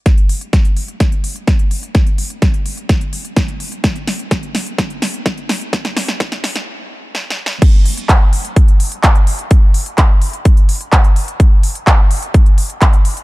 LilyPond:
\new DrumStaff \with { instrumentName = "Drums" } \drummode { \time 4/4 \tempo 4 = 127 <hh bd sn>16 hh16 hho16 hh16 <hh bd sn>16 hh16 hho16 hh16 <hh bd sn>16 hh16 hho16 hh16 <hh bd sn>16 hh16 hho16 hh16 | <hh bd sn>16 hh16 hho16 hh16 <hh bd sn>16 hh16 hho16 hh16 <hh bd sn>16 hh16 hho16 hh16 <hh bd sn>16 hh16 hho16 hh16 | <hh bd sn>16 hh16 <hho sn>16 hh16 <hh bd sn>16 hh16 <hho sn>16 hh16 <hh bd sn>16 hh16 <hho sn>16 hh16 <hh bd sn>16 hh16 <hho sn>16 hh16 | <hh bd sn>16 <hh sn>16 <hho sn>16 <hh sn>16 <hh bd sn>16 <hh sn>16 <hho sn>16 <hh sn>16 r4 \tuplet 3/2 { sn8 sn8 sn8 } |
<cymc hh bd>8 hho16 hh16 <hc hh bd>8 hho16 hh16 <hh bd>16 hh16 hho16 hh16 <hc hh bd>16 hh16 hho16 hh16 | <hh bd>8 hho16 hh16 <hc hh bd>8 hho16 hh16 <hh bd>16 hh16 hho16 hh16 <hc hh bd>16 hh16 hho16 hh16 | <hh bd>8 hho16 hh16 <hc hh bd>8 hho16 hh16 <hh bd>16 hh16 hho16 hh16 <hc hh bd>16 hh16 hho16 hh16 | }